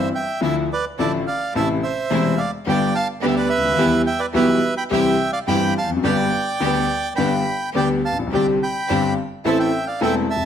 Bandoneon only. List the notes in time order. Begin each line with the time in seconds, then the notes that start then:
0.15 E5 G5
0.42 A4 E5
0.73 B4 D5
0.99 A4 D5
1.27 D5 F5
1.56 E5 A5
1.83 C5 E5
2.37 D5 F5
2.69 D5 G5
2.95 F5 A5
3.23 B4 D5
3.27 E5
3.36 B4 D5
3.49 B4 E5
4.07 E5 G5
4.19 B4 D5
4.36 B4 E5
4.77 G5 B5
4.93 E5 G5
5.33 D5 F5
5.47 G5 B5
5.78 F5 A5
6.04 D5 G5
7.16 G5 B5
7.76 D5 G5
8.05 F5 A5
8.34 D5 G5
8.63 G5 B5
9.46 E5 A5
9.60 E5 G5
9.87 D5 F5
10.03 E5 G5
10.30 E5 A5